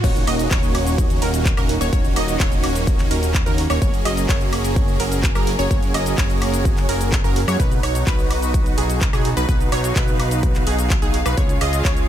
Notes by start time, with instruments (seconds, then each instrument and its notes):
0.04 analog synth bass D#1, string section D#3 A#3 C#4 F#4, supersaw synth A#3 C#4 D#4 F#4 C#5, synth pluck C#5, kick, closed hi-hat, crash, cabasa
0.16 closed hi-hat, cabasa
0.27 analog synth bass D#1, supersaw synth A#3 C#4 D#4 F#4 D#5, synth pluck D#5, open hi-hat, high woodblock
0.39 closed hi-hat, cabasa
0.51 analog synth bass D#1, supersaw synth A#3 D#4, synth pluck C#5, kick, clap, closed hi-hat, cabasa
0.63 closed hi-hat, cabasa
0.75 open hi-hat, high woodblock
0.87 closed hi-hat, cabasa
0.98 kick, closed hi-hat, cabasa
1.10 closed hi-hat, cabasa
1.22 analog synth bass D#1, supersaw synth A#3 C#4 D#4 F#4 A#4, synth pluck A#4, open hi-hat
1.34 closed hi-hat, cabasa
1.45 kick, clap, closed hi-hat, cabasa
1.57 analog synth bass D#1, supersaw synth A#3 C#4 D#4 F#4 A#4, synth pluck A#4, closed hi-hat, cabasa, high woodblock
1.69 open hi-hat
1.81 analog synth bass D#1, supersaw synth A#3 C#4 D#4 F#4 C#5, synth pluck C#5, closed hi-hat, cabasa
1.93 supersaw synth A#3 C#4 D#4 F#4 C#5, synth pluck C#5, kick, closed hi-hat, cabasa
2.05 closed hi-hat, cabasa
2.16 analog synth bass D#1, supersaw synth A#3 C#4 D#4 F#4 D#5, synth pluck D#5, open hi-hat, high woodblock
2.28 closed hi-hat, cabasa
2.40 analog synth bass D#1, supersaw synth C#4 D#4 F#4 C#5, synth pluck C#5, kick, clap, closed hi-hat, cabasa
2.52 closed hi-hat, cabasa
2.64 open hi-hat, high woodblock
2.75 closed hi-hat, cabasa
2.87 kick, closed hi-hat, cabasa
2.99 clap, closed hi-hat, cabasa
3.11 analog synth bass D#1, supersaw synth A#3 C#4 D#4 F#4 A#4, synth pluck A#4, open hi-hat
3.23 closed hi-hat, cabasa
3.34 kick, clap, closed hi-hat, cabasa
3.46 analog synth bass D#2, supersaw synth A#3 C#4 D#4 F#4 A#4, synth pluck A#4, closed hi-hat, cabasa
3.58 open hi-hat
3.70 analog synth bass D#1, supersaw synth A#3 C#4 D#4 F#4 C#5, synth pluck C#5, closed hi-hat, cabasa, high woodblock
3.82 analog synth bass F#1, string section F#3 G#4 A#4, supersaw synth A#3 C#4 F#4 G#4 C#5, synth pluck C#5, kick, closed hi-hat, cabasa
3.94 closed hi-hat, cabasa
4.05 analog synth bass F#1, supersaw synth A#3 C#4 F#4 G#4 D#5, synth pluck D#5, open hi-hat, high woodblock
4.17 closed hi-hat, cabasa
4.29 supersaw synth A#3 C#4 G#4 C#5, synth pluck C#5, kick, clap, closed hi-hat, cabasa
4.41 closed hi-hat, cabasa
4.53 open hi-hat, high woodblock
4.64 closed hi-hat, cabasa
4.76 kick, closed hi-hat, cabasa
4.88 closed hi-hat, cabasa
5.00 analog synth bass F#1, supersaw synth A#3 C#4 F#4 G#4 A#4, synth pluck A#4, open hi-hat
5.12 closed hi-hat, cabasa
5.23 kick, clap, closed hi-hat, cabasa
5.35 analog synth bass F#1, supersaw synth A#3 C#4 F#4 G#4 A#4, synth pluck A#4, closed hi-hat, cabasa, high woodblock
5.47 open hi-hat
5.59 analog synth bass F#1, supersaw synth A#3 C#4 F#4 G#4 C#5, synth pluck C#5, closed hi-hat, cabasa
5.71 synth pluck C#5, kick, closed hi-hat, cabasa
5.83 closed hi-hat, cabasa
5.94 analog synth bass F#1, supersaw synth A#3 C#4 F#4 G#4 D#5, synth pluck D#5, open hi-hat, high woodblock
6.06 closed hi-hat, cabasa
6.18 analog synth bass F#1, supersaw synth C#4, synth pluck C#5, kick, clap, closed hi-hat, cabasa
6.30 closed hi-hat, cabasa
6.42 open hi-hat, high woodblock
6.53 closed hi-hat, cabasa
6.65 kick, closed hi-hat, cabasa
6.77 clap, closed hi-hat, cabasa
6.89 analog synth bass F#1, supersaw synth A#3 C#4 F#4 G#4 A#4, synth pluck A#4, open hi-hat
7.01 closed hi-hat, cabasa
7.12 kick, clap, closed hi-hat, cabasa
7.24 analog synth bass F#1, supersaw synth A#3 C#4 F#4 G#4 A#4, synth pluck A#4, closed hi-hat, cabasa
7.36 open hi-hat
7.48 analog synth bass F#2, supersaw synth A#3 C#4 F#4 G#4 C#5, synth pluck C#5, closed hi-hat, cabasa, high woodblock
7.59 analog synth bass B1, string section B3 D#4 F#4, supersaw synth D#4 F#4 B4, synth pluck B4, kick, closed hi-hat, cabasa
7.72 closed hi-hat, cabasa
7.83 analog synth bass B1, supersaw synth D#4 F#4 C#5, synth pluck C#5, open hi-hat, high woodblock
7.95 closed hi-hat, cabasa
8.07 analog synth bass B1, supersaw synth F#4 B4, synth pluck B4, kick, clap, closed hi-hat, cabasa
8.19 closed hi-hat, cabasa
8.31 open hi-hat, high woodblock
8.42 closed hi-hat, cabasa
8.54 kick, closed hi-hat, cabasa
8.66 closed hi-hat, cabasa
8.78 analog synth bass B1, supersaw synth D#4 F#4 G#4, synth pluck G#4, open hi-hat
8.90 closed hi-hat, cabasa
9.01 kick, clap, closed hi-hat, cabasa
9.13 analog synth bass B1, supersaw synth D#4 F#4 G#4, synth pluck G#4, closed hi-hat, cabasa, high woodblock
9.25 open hi-hat
9.37 analog synth bass B1, supersaw synth D#4 F#4 B4, synth pluck B4, closed hi-hat, cabasa
9.49 analog synth bass B1, synth pluck B4, string section F5, kick, closed hi-hat, cabasa
9.60 closed hi-hat, cabasa
9.72 analog synth bass B1, supersaw synth D#4 F#4 C#5, synth pluck C#5, open hi-hat, high woodblock
9.84 closed hi-hat, cabasa
9.96 supersaw synth D#4 F#4 B4, synth pluck B4, kick, clap, closed hi-hat, cabasa
10.08 closed hi-hat, cabasa
10.20 open hi-hat, high woodblock
10.31 closed hi-hat, cabasa
10.43 kick, closed hi-hat, cabasa
10.55 clap, closed hi-hat, cabasa
10.67 analog synth bass B1, supersaw synth D#4 F#4 G#4, synth pluck G#4, open hi-hat
10.79 closed hi-hat, cabasa
10.90 kick, clap, closed hi-hat, cabasa
11.02 analog synth bass B1, supersaw synth D#4 F#4 G#4, synth pluck G#4, closed hi-hat, cabasa
11.14 open hi-hat
11.26 analog synth bass B1, supersaw synth D#4 F#4 B4, synth pluck B4, closed hi-hat, cabasa, high woodblock
11.37 string section C#3 C#4 G#4, supersaw synth G#4 C#5, synth pluck C#5, kick, closed hi-hat, cabasa
11.49 closed hi-hat, cabasa
11.61 analog synth bass C#2, supersaw synth F4 G#4 D#5, synth pluck D#5, open hi-hat, high woodblock
11.73 closed hi-hat, cabasa
11.85 supersaw synth F4 G#4 C#5, synth pluck C#5, kick, clap, closed hi-hat, cabasa
11.97 closed hi-hat, cabasa